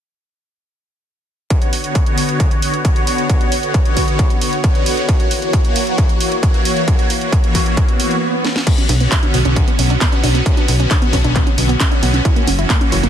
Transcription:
1.50 D3 B3 F#4 C#5, kick, closed hi-hat
1.62 closed hi-hat
1.73 open hi-hat
1.84 D3 B3 F#4 C#5, closed hi-hat
1.95 kick, closed hi-hat
2.06 D3 B3 F#4 C#5, closed hi-hat
2.18 open hi-hat
2.29 D3 B3 F#4 C#5, closed hi-hat
2.40 kick, closed hi-hat
2.51 closed hi-hat
2.62 D3 B3 F#4 C#5, open hi-hat
2.74 closed hi-hat
2.85 D3 B3 F#4 C#5, kick, closed hi-hat
2.96 closed hi-hat
3.07 D3 B3 F#4 C#5, open hi-hat
3.18 closed hi-hat
3.29 D3 B3 F#4 C#5, kick, closed hi-hat
3.41 closed hi-hat
3.52 open hi-hat
3.63 D3 B3 F#4 C#5, closed hi-hat
3.74 kick, closed hi-hat
3.85 D3 B3 F#4 C#5, closed hi-hat
3.97 kick, open hi-hat
4.08 D3 B3 F#4 C#5, closed hi-hat
4.19 kick, closed hi-hat
4.30 closed hi-hat
4.41 D3 B3 F#4 C#5, open hi-hat
4.53 closed hi-hat
4.64 D3 B3 F#4 C#5, kick, closed hi-hat
4.75 closed hi-hat
4.86 D3 B3 F#4 C#5, open hi-hat
4.97 closed hi-hat
5.09 E3 A#3 F#4 C#5, kick, closed hi-hat
5.20 closed hi-hat
5.31 open hi-hat
5.42 E3 A#3 F#4 C#5, closed hi-hat
5.53 kick, closed hi-hat
5.65 E3 A#3 F#4 C#5, closed hi-hat
5.76 open hi-hat
5.87 E3 A#3 F#4 C#5, closed hi-hat
5.98 kick, closed hi-hat
6.09 closed hi-hat
6.20 E3 A#3 F#4 C#5, open hi-hat
6.32 closed hi-hat
6.43 E3 A#3 F#4 C#5, kick, closed hi-hat
6.54 closed hi-hat
6.65 E3 A#3 F#4 C#5, open hi-hat
6.77 closed hi-hat
6.88 E3 A#3 F#4 C#5, kick, closed hi-hat
6.99 closed hi-hat
7.10 open hi-hat
7.21 E3 A#3 F#4 C#5, closed hi-hat
7.32 kick, closed hi-hat
7.44 E3 A#3 F#4 C#5, closed hi-hat
7.55 kick, open hi-hat
7.66 E3 A#3 F#4 C#5, closed hi-hat
7.77 kick, closed hi-hat, swell
7.88 closed hi-hat
8.00 E3 A#3 F#4 C#5, open hi-hat
8.11 closed hi-hat
8.44 snare
8.56 snare
8.67 D3 B3 C#4 F#4, kick, closed hi-hat, crash
8.78 C#4, closed hi-hat
8.89 B1 D4, open hi-hat
9.00 D3 B3 C#4 F#4, closed hi-hat
9.12 C#4, kick, clap, closed hi-hat
9.23 D3 B3 C#4 D4 F#4, closed hi-hat
9.34 B1 B3, open hi-hat
9.45 B1 D3 B3 C#4 F#4, closed hi-hat
9.56 D4, kick, closed hi-hat
9.68 B3, closed hi-hat
9.79 B1 D3 B3 C#4 F#4, open hi-hat
9.90 D4, closed hi-hat
10.01 D3 B3 C#4 F#4, kick, clap, closed hi-hat
10.12 C#4, closed hi-hat
10.23 B1 D3 B3 C#4 D4 F#4, open hi-hat
10.35 B3, closed hi-hat
10.46 D3 B3 C#4 F#4, kick, closed hi-hat
10.57 D4, closed hi-hat
10.68 B1 B3, open hi-hat
10.79 D3 B3 C#4 F#4, closed hi-hat
10.91 D4, kick, clap, closed hi-hat
11.02 D3 B3 C#4 F#4, closed hi-hat
11.13 B1 C#4, kick, open hi-hat
11.24 B1 D3 B3 C#4 D4 F#4, closed hi-hat
11.35 B3, kick, clap, closed hi-hat
11.47 C#4, closed hi-hat
11.58 B1 D3 B3 C#4 D4 F#4, open hi-hat
11.69 B3, closed hi-hat
11.80 D3 B3 C#4 F#4, kick, clap, closed hi-hat
11.91 D4, closed hi-hat
12.03 B1 D3 B3 C#4 F#4, open hi-hat
12.14 C#4, closed hi-hat
12.25 E3 A#3 C#4 E4 F#4, kick, closed hi-hat
12.36 A#3, closed hi-hat
12.47 F#1 C#4, open hi-hat
12.59 E3 A#3 C#4 E4 F#4, closed hi-hat
12.70 A#3, kick, clap, closed hi-hat
12.81 E3 A#3 C#4 F#4, closed hi-hat
12.92 F#1 E4, open hi-hat
13.03 F#1 E3 A#3 C#4 F#4, closed hi-hat

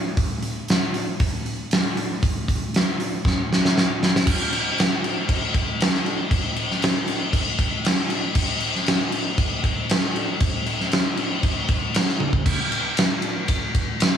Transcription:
0.17 kick, open hi-hat
0.42 open hi-hat
0.68 snare, open hi-hat
0.94 open hi-hat
1.20 kick, open hi-hat
1.46 open hi-hat
1.71 snare, open hi-hat
1.97 open hi-hat
2.23 kick, open hi-hat
2.48 kick, open hi-hat
2.74 snare, open hi-hat
3.00 open hi-hat
3.25 kick, snare
3.53 snare
3.65 snare
3.78 snare
4.03 snare
4.16 snare
4.27 kick, crash
4.53 crash
4.78 snare, crash
5.04 crash
5.29 kick, crash
5.54 kick, crash
5.80 snare, crash
5.95 snare
6.06 crash
6.31 kick, crash
6.56 crash
6.71 snare
6.82 snare, crash
7.08 crash
7.33 kick, crash
7.59 kick, crash
7.85 snare, crash
8.10 crash
8.35 kick, crash
8.60 crash
8.76 snare
8.86 snare, crash
9.12 crash
9.38 kick, crash
9.64 kick, crash
9.89 snare, crash
10.16 crash
10.40 kick, crash
10.66 crash
10.81 snare
10.91 snare, crash
11.17 crash
11.43 kick, crash
11.68 kick, crash
11.94 snare, crash
12.09 snare
12.20 high tom
12.33 kick
12.46 kick, crash
12.72 ride
12.97 snare, ride
13.22 ride
13.48 kick, ride
13.75 kick, ride
14.00 snare, ride

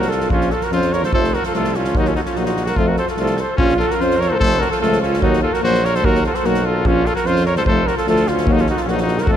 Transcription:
Already playing: C2 F#4
0.02 snare
0.08 F4 A4, snare
0.20 snare
0.29 A#1 F3 C#4 F4, kick
0.41 snare
0.50 F4 A4, snare
0.61 F#4 A#4, snare
0.71 F2 F3 C#4 F4 C5, snare
0.82 snare
0.93 A#4 C#5, snare
1.03 A4 C5, snare
1.12 F1 F3 A3 A4 C5, kick
1.24 snare
1.33 F#4 A#4, snare
1.43 F4 A4, snare
1.53 C2 F3 A3 F4 A4, snare
1.64 snare
1.74 C#4 F4, snare
1.84 snare
1.94 D#2 F#3 A#3 D#4 F#4, kick
2.05 C#4 F4, snare
2.15 D#4 F#4, snare
2.25 C#4 F4, snare
2.34 A#1 F#3 A#3 D#4 F#4, snare
2.46 D#4 F#4, snare
2.56 snare
2.65 F#4 A#4, snare
2.76 F2 F3 A3 F4 A4, kick
2.88 F#4 A#4
2.96 A4 C5, snare
3.07 F4 A4, snare
3.17 C2 F3 A3 F4, snare
3.21 A4
3.26 snare
3.37 A4 C5, snare
3.57 A#1 F3 C#4 F4, kick
3.69 snare
3.77 F4 A4, snare
3.88 F#4 A#4, snare
3.96 F2 F3 C#4 F4
4.01 C5, snare
4.11 snare
4.18 A#4 C#5, snare
4.28 F#4 A4 C5
4.32 A4 A#4 C5
4.37 F1 A3 A4 C5, kick
4.41 F3
4.51 snare
4.60 F#4 A#4, snare
4.70 F4 A4, snare
4.80 C#2 F3 A3 F4 A4, snare
4.92 snare
5.02 C#4 F4, snare
5.14 snare
5.22 D#2 F#3 A#3 D#4 F#4, kick
5.33 snare
5.43 F4 A4
5.53 F#4 A#4, snare
5.62 A#1 F#3 A#3 F#4 C5, snare
5.74 snare
5.84 A#4 C#5, snare
5.95 A4 C5, snare
6.03 D#2 F#3 A#3 F#4 A#4, kick
6.15 snare
6.24 F4 A4, snare
6.34 A4 C5, snare
6.44 B1 F#3 A#3 F#4 A#4, snare
6.54 snare
6.65 F4 A4
6.85 A#1 F3 C#4 F4, kick
7.05 F4 A4, snare
7.15 F#4 A#4, snare
7.25 F2 F3 C#4 F4 C5, snare
7.36 snare
7.46 A#4 C#5, snare
7.56 A4 C5, snare
7.66 F1 F3 A3 A4 C5, kick
7.86 F#4 A#4, snare
7.97 F4 A4, snare
8.07 D2 F3 A3 F4 A4, snare
8.16 snare
8.27 F4, snare
8.31 C#4
8.38 snare
8.45 D#2 F#3 A#3 F#4, kick
8.52 D#4
8.57 C#4 F4, snare
8.67 D#4 F#4, snare
8.77 F4, snare
8.83 A#1 C#4
8.87 F#3 A#3 F#4, snare
8.92 D#4
8.98 F#4, snare
9.02 D#4
9.08 snare
9.18 A#4, snare
9.23 F#4
9.27 F2 F3 A3 A4, kick
9.33 F4

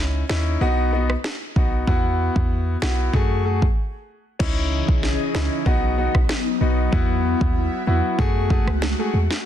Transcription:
Already playing: C#2 C#4 D#4 E4
0.29 D#2 C#4 D#4 E4, snare
0.61 B1 B3 D#4 F#4
0.92 B3 D#4 F#4
1.10 cross-stick
1.24 snare
1.56 B1 B3 D#4 F#4, kick
1.87 E2 B3 E4 F#4, kick
2.36 E2, kick
2.82 B1 B3 E4 F#4, snare
3.13 F#2 A3 F#4 G#4, kick
3.45 A3 F#4 G#4
3.62 kick
4.39 C#2 C#3 E3 C#4 D#4 E4 G#4 D#5, kick, crash
4.88 B1, kick
5.03 snare
5.34 C#2 C#4 D#4 E4, snare
5.66 B1 F#3 B3 D#4 F#4, kick
5.97 B3 D#4 F#4
6.15 B1, kick, cross-stick
6.29 snare
6.61 B1 B3 D#4 F#4
6.92 E2 B3 E4 F#4, kick
7.41 D#2, kick
7.87 E2 B3 E4 F#4
8.19 F#2 G#3 A3 F#4 G#4, kick
8.50 A3 F#4 G#4, kick
8.67 C#2, cross-stick
8.82 snare
8.99 A3 F#4 G#4
9.14 E2
9.31 snare

